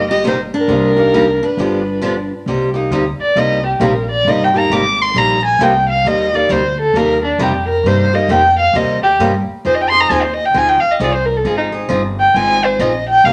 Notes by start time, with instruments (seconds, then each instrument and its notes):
Already playing: upright bass G1
0.11 steel-string acoustic guitar G4, violin D#5
0.24 steel-string acoustic guitar C3 G3 A#3 D#4 G4
0.28 violin C5
0.54 steel-string acoustic guitar D4, violin A#4
0.68 upright bass C2, steel-string acoustic guitar C3 G3 A#3 D#4 G4
0.96 steel-string acoustic guitar A#3 D#4 G4
1.14 steel-string acoustic guitar C3 G3 A#3 D#4 G4
1.43 steel-string acoustic guitar D4, violin B4
1.57 upright bass G1, steel-string acoustic guitar D3 F3 B3 D4 G4
2.02 steel-string acoustic guitar D3 F3 B3 D4 G4
2.46 upright bass C2, steel-string acoustic guitar C3 G3 A#3 D#4 G4
2.74 steel-string acoustic guitar A#3 D#4 G4
2.91 upright bass D2, steel-string acoustic guitar C3 G3 A#3 D#4 G4
3.19 violin D5, muted upright bass stroke
3.35 upright bass C2, steel-string acoustic guitar C3 G3 A#3 D#4 G4, violin D#5
3.66 violin G4
3.80 upright bass A#1, steel-string acoustic guitar C3 G3 A#3 D#4 G4
3.84 violin A#4
4.11 violin D5
4.25 upright bass G1, steel-string acoustic guitar C3 G3 A#3 D#4 G4
4.29 violin D#5
4.44 violin G5
4.54 steel-string acoustic guitar A#3 D#4 G4
4.58 violin A#5
4.70 upright bass G#1, steel-string acoustic guitar C3 G3 A#3 D#4 G4, violin D6
5.02 violin C6
5.14 upright bass A#1, steel-string acoustic guitar C3 G3 A#3 D#4 G4, violin A#5
5.45 violin G#5
5.59 upright bass C2, steel-string acoustic guitar C3 G3 A#3 D#4 G4, violin G5
5.89 violin F5
6.04 upright bass D#2, steel-string acoustic guitar C3 G3 A#3 D#4 G4, violin D#5
6.33 steel-string acoustic guitar A#3 D#4 G4, violin D5
6.49 upright bass D2, steel-string acoustic guitar C3 G3 A#3 D#4 G4, violin C5
6.80 violin A4
6.94 upright bass D#2, steel-string acoustic guitar C3 G3 A#3 D#4 G4, violin A#4
7.24 violin D4
7.38 upright bass F2, steel-string acoustic guitar C3 G3 A#3 D#4 G4
7.42 violin G4
7.68 violin A#4
7.83 upright bass G2, steel-string acoustic guitar C3 G3 A#3 D#4 G4, violin C5
8.13 steel-string acoustic guitar A#3 D#4 G4, violin D#5
8.28 upright bass F2, steel-string acoustic guitar C3 G3 A#3 D#4 G4, violin G5
8.59 violin F5
8.73 upright bass D#2, steel-string acoustic guitar C3 G3 A#3 D#4 G4, violin D#5
9.03 violin G4
9.19 upright bass G2, steel-string acoustic guitar C3 G3 A#3 D#4 G4
9.47 muted upright bass stroke
9.65 upright bass F2, steel-string acoustic guitar F3 C4 D#4 G#4, violin C5
9.75 violin D#5
9.82 violin G5
9.89 steel-string acoustic guitar D#4 G#4, violin C6
9.94 steel-string acoustic guitar C4
10.00 violin A#5
10.10 upright bass D#2, steel-string acoustic guitar F3 C4 D#4 G#4, violin G#5
10.23 violin C5
10.34 violin D#5
10.45 violin G5
10.54 upright bass D2, steel-string acoustic guitar F3 C4 D#4 G#4, violin G#5
10.69 violin G5
10.80 violin F5, muted upright bass stroke
10.92 violin D#5
11.00 upright bass C2, steel-string acoustic guitar F3 C4 D#4 G#4
11.04 violin D5
11.14 violin C5
11.25 violin A#4
11.37 violin A4
11.45 upright bass G#1, steel-string acoustic guitar F3 C4 D#4 G#4, violin G#4
11.57 violin D#4
11.72 steel-string acoustic guitar C4 D#4 G#4
11.89 upright bass G1, steel-string acoustic guitar F3 C4 D#4 G#4
12.20 violin G5
12.34 upright bass G#1, steel-string acoustic guitar F3 C4 D#4 G#4, violin G#5
12.65 violin C5
12.79 upright bass A#1, steel-string acoustic guitar F3 C4 D#4 G#4, violin D#5
13.09 violin G5
13.24 upright bass C2, steel-string acoustic guitar C3 G3 A#3 D#4 G4, violin F5